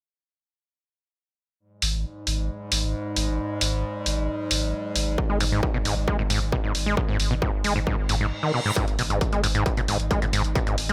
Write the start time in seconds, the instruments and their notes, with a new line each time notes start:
1.60 synth drone G#2
1.82 sub bass G#1, open hi-hat
1.94 sub bass G#1
2.27 sub bass G#1, open hi-hat
2.38 sub bass G#1
2.72 sub bass G#1, open hi-hat
2.83 sub bass G#1
3.16 sub bass G#1, open hi-hat
3.28 sub bass G#1
3.61 sub bass G#1, open hi-hat
3.73 sub bass G#1
4.06 sub bass G#1, open hi-hat
4.18 sub bass G#1
4.51 sub bass G#1, open hi-hat
4.62 sub bass G#1
4.96 sub bass G#1, open hi-hat
5.07 sub bass G#1
5.18 kick
5.30 acid bass G#3
5.40 sub bass G#1, acid bass G#2, open hi-hat
5.52 sub bass G#1, acid bass G#2
5.63 kick
5.74 acid bass B2
5.85 sub bass G#1, acid bass G#2, open hi-hat
5.97 sub bass G#1
6.08 acid bass G#3, kick
6.19 acid bass G#2
6.30 sub bass G#1, acid bass G#2, open hi-hat
6.41 sub bass G#1
6.52 acid bass B2, kick
6.64 acid bass G#2
6.75 sub bass G#1, open hi-hat
6.86 sub bass G#1, acid bass G#3
6.97 acid bass G#2, kick
7.09 acid bass G#2
7.20 sub bass G#1, open hi-hat
7.31 sub bass G#1, acid bass B2
7.42 acid bass G#2, kick
7.64 sub bass G#1, acid bass G#3, open hi-hat
7.76 sub bass G#1, acid bass G#2
7.87 acid bass G#2, kick, reverse cymbal
8.09 sub bass G#1, acid bass G#2, open hi-hat
8.21 sub bass G#1, acid bass G#2
8.43 acid bass D#3
8.54 acid bass B2
8.65 acid bass G#2
8.76 synth drone G#2, acid bass G#2, kick, closed hi-hat
8.88 closed hi-hat
8.99 sub bass G#1, acid bass B2, open hi-hat
9.10 sub bass G#1, acid bass G#2, closed hi-hat
9.21 kick, closed hi-hat
9.33 acid bass G#3, closed hi-hat
9.43 sub bass G#1, acid bass G#2, open hi-hat
9.55 sub bass G#1, acid bass G#2, closed hi-hat
9.66 kick, closed hi-hat
9.77 acid bass B2, closed hi-hat
9.88 sub bass G#1, acid bass G#2, open hi-hat
10.00 sub bass G#1, closed hi-hat
10.11 acid bass G#3, kick, closed hi-hat
10.22 acid bass G#2, closed hi-hat
10.33 sub bass G#1, acid bass G#2, open hi-hat
10.44 sub bass G#1, closed hi-hat
10.55 acid bass B2, kick, closed hi-hat
10.67 acid bass G#2, closed hi-hat
10.78 sub bass G#1, open hi-hat
10.89 sub bass G#1, acid bass G#3, closed hi-hat